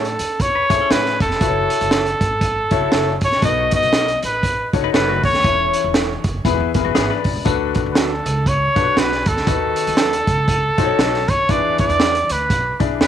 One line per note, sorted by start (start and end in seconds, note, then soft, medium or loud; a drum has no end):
0.00 0.14 A2 medium
0.00 0.15 A2 medium
0.00 0.43 A4 medium
0.05 closed hi-hat soft
0.19 0.61 E2 medium
0.19 closed hi-hat medium
0.40 0.93 C#5 medium
0.40 kick medium
0.40 closed hi-hat medium
0.55 0.69 B4 medium
0.70 0.87 E2 medium
0.70 1.10 E4 medium
0.70 0.80 E4 medium
0.70 1.10 G#4 medium
0.70 1.10 A4 medium
0.70 0.75 C5 medium
0.70 0.80 C#5 medium
0.70 kick medium
0.70 closed hi-hat medium
0.76 1.13 C#5 medium
0.81 1.38 C#4 medium
0.81 1.38 A4 medium
0.90 1.15 A2 medium
0.90 1.05 E4 medium
0.90 1.05 G#4 medium
0.90 1.21 B4 medium
0.90 1.05 C#5 medium
0.90 snare loud
0.90 closed hi-hat medium
1.06 snare soft
1.20 1.37 F1 medium
1.20 3.19 A4 medium
1.20 kick medium
1.20 closed hi-hat medium
1.31 snare soft
1.41 1.65 F#1 medium
1.41 1.98 E4 medium
1.41 1.98 F#4 medium
1.41 1.98 A4 medium
1.41 1.48 B4 medium
1.41 kick loud
1.41 closed hi-hat medium
1.48 2.01 C#5 medium
1.70 closed hi-hat medium
1.81 2.14 F#1 medium
1.81 closed hi-hat soft
1.91 2.05 E4 medium
1.91 2.05 A4 medium
1.91 2.06 C#5 medium
1.91 snare loud
1.91 closed hi-hat medium
2.06 closed hi-hat medium
2.21 2.62 G#1 medium
2.21 kick medium
2.21 closed hi-hat medium
2.41 kick medium
2.41 closed hi-hat medium
2.71 2.88 F#1 medium
2.71 3.11 E4 medium
2.71 3.12 F#4 medium
2.71 3.12 A4 medium
2.71 3.12 C#5 medium
2.71 kick medium
2.71 closed hi-hat medium
2.92 3.16 F#1 medium
2.92 3.06 E4 medium
2.92 3.06 A4 medium
2.92 3.07 C#5 medium
2.92 snare loud
2.92 closed hi-hat medium
3.21 3.39 A#1 medium
3.21 3.43 C#5 medium
3.21 kick medium
3.21 closed hi-hat medium
3.32 snare soft
3.42 3.67 B1 loud
3.42 4.19 B2 medium
3.42 3.99 D#4 medium
3.42 3.99 F#4 medium
3.42 3.99 A4 medium
3.42 3.99 B4 medium
3.42 3.72 D#5 loud
3.42 kick loud
3.42 closed hi-hat medium
3.71 4.21 D#5 loud
3.71 kick medium
3.71 closed hi-hat medium
3.82 4.15 B1 medium
3.82 closed hi-hat soft
3.93 4.07 D#4 medium
3.93 4.07 A4 medium
3.93 4.08 B4 loud
3.93 snare loud
3.93 closed hi-hat medium
4.08 closed hi-hat soft
4.23 4.64 A1 medium
4.23 4.69 B4 medium
4.23 closed hi-hat medium
4.43 kick medium
4.43 closed hi-hat medium
4.73 4.90 F#1 medium
4.73 4.78 D4 medium
4.73 5.13 F#4 medium
4.73 5.14 A4 medium
4.73 5.13 C#5 medium
4.73 kick medium
4.73 closed hi-hat medium
4.79 5.16 D#4 medium
4.84 4.94 D#4 medium
4.84 4.94 B4 medium
4.94 5.18 F#1 medium
4.94 5.08 C#4 medium
4.94 5.08 D#4 medium
4.94 5.08 A4 medium
4.94 5.08 B4 medium
4.94 5.22 B4 medium
4.94 snare loud
4.94 closed hi-hat medium
5.09 5.43 A3 medium
5.09 5.43 F#4 medium
5.23 5.40 D#2 medium
5.23 5.91 C#5 loud
5.23 kick medium
5.23 open hi-hat medium
5.34 snare soft
5.44 5.69 E1 loud
5.44 6.21 E3 medium
5.44 6.01 C#4 medium
5.44 6.01 E4 medium
5.44 6.01 A4 medium
5.44 6.01 C#5 medium
5.44 kick loud
5.44 closed hi-hat medium
5.73 closed hi-hat medium
5.84 6.17 E1 medium
5.94 6.09 E4 medium
5.94 6.09 A4 medium
5.94 6.09 C#5 medium
5.94 snare loud
5.94 closed hi-hat medium
6.24 6.41 F#1 medium
6.24 kick medium
6.24 closed hi-hat medium
6.45 6.57 E1 medium
6.45 7.21 E3 medium
6.45 6.69 B3 medium
6.45 6.69 E4 medium
6.45 6.69 G#4 medium
6.45 6.69 B4 medium
6.45 kick medium
6.45 closed hi-hat medium
6.60 6.72 E2 medium
6.74 6.83 E1 medium
6.74 7.15 B3 medium
6.74 7.15 E4 medium
6.74 7.15 G#4 medium
6.74 6.80 A#4 medium
6.74 kick medium
6.74 closed hi-hat medium
6.81 6.95 F#4 medium
6.81 7.18 B4 medium
6.85 6.94 F#1 medium
6.95 7.08 G#1 medium
6.95 7.10 B3 medium
6.95 7.10 E4 medium
6.95 7.09 G#4 medium
6.95 7.10 G#4 medium
6.95 7.10 B4 medium
6.95 snare loud
6.95 closed hi-hat medium
7.10 7.44 D4 medium
7.10 7.44 B4 medium
7.24 7.33 B1 medium
7.24 kick medium
7.24 open hi-hat medium
7.36 7.44 E1 medium
7.45 7.70 D2 medium
7.45 8.22 D3 medium
7.45 8.02 D4 medium
7.45 8.02 F#4 medium
7.45 8.02 A4 medium
7.45 8.02 B4 medium
7.45 kick loud
7.45 closed hi-hat medium
7.75 kick loud
7.75 closed hi-hat medium
7.86 8.19 D2 medium
7.92 8.00 B4 medium
7.92 snare loud
7.92 closed hi-hat medium
7.96 8.10 D4 medium
7.96 8.11 F#4 medium
7.96 8.50 A4 medium
7.96 8.11 B4 medium
8.25 8.67 C#2 medium
8.25 closed hi-hat medium
8.46 9.00 C#5 medium
8.46 kick medium
8.46 closed hi-hat medium
8.76 8.93 B1 medium
8.76 9.16 D4 medium
8.76 8.81 F4 soft
8.76 9.16 A4 medium
8.76 9.16 B4 medium
8.76 kick medium
8.76 closed hi-hat medium
8.82 9.19 F#4 medium
8.96 9.21 B1 medium
8.96 9.11 D4 medium
8.96 9.11 F#4 medium
8.96 9.11 B4 medium
8.96 9.30 B4 medium
8.96 snare medium
8.96 closed hi-hat medium
9.12 snare soft
9.26 9.43 D2 medium
9.26 11.32 A4 medium
9.26 kick medium
9.26 closed hi-hat medium
9.37 snare soft
9.47 9.72 D#2 loud
9.47 10.23 D#3 medium
9.47 10.03 D#4 medium
9.47 10.04 F#4 medium
9.47 10.04 A4 medium
9.47 10.04 B4 medium
9.47 kick loud
9.47 closed hi-hat medium
9.76 closed hi-hat medium
9.87 10.20 D#2 medium
9.87 closed hi-hat soft
9.97 10.12 D#4 medium
9.97 10.12 A4 medium
9.97 10.12 B4 medium
9.97 snare loud
9.97 closed hi-hat medium
10.13 closed hi-hat medium
10.27 10.69 C#2 medium
10.27 kick medium
10.27 closed hi-hat medium
10.48 kick medium
10.48 closed hi-hat medium
10.78 10.95 B1 medium
10.78 11.18 D#4 medium
10.78 11.18 F#4 medium
10.78 11.18 A4 medium
10.78 10.83 C5 medium
10.78 kick medium
10.78 closed hi-hat medium
10.84 11.21 C#5 loud
10.98 11.23 B1 medium
10.98 11.13 D#4 medium
10.98 11.13 A4 medium
10.98 11.13 B4 medium
10.98 snare loud
10.98 closed hi-hat medium
11.14 snare soft
11.28 11.45 D#2 medium
11.28 11.52 C#5 medium
11.28 kick medium
11.28 closed hi-hat medium
11.49 11.74 E2 medium
11.49 12.26 E3 medium
11.49 12.06 D4 medium
11.49 12.06 E4 medium
11.49 12.06 G#4 medium
11.49 12.06 B4 medium
11.49 11.80 D5 loud
11.49 kick loud
11.49 closed hi-hat medium
11.78 12.33 D5 loud
11.78 kick medium
11.78 closed hi-hat medium
11.89 12.22 E2 loud
11.89 closed hi-hat soft
11.99 12.14 D4 medium
11.99 12.14 G#4 medium
11.99 12.14 B4 medium
11.99 snare loud
11.99 closed hi-hat medium
12.15 closed hi-hat medium
12.29 12.47 D2 medium
12.29 12.79 B4 medium
12.29 closed hi-hat medium
12.50 12.74 B1 medium
12.50 kick medium
12.50 closed hi-hat medium
12.80 12.97 B1 medium
12.80 13.07 D4 medium
12.80 13.07 E4 medium
12.80 13.07 G#4 medium
12.80 13.07 D5 medium
12.80 kick medium
12.80 closed hi-hat medium
13.01 13.07 E2 medium
13.01 13.07 D4 medium
13.01 13.07 G#4 medium
13.01 13.07 B4 loud
13.01 snare loud
13.01 closed hi-hat medium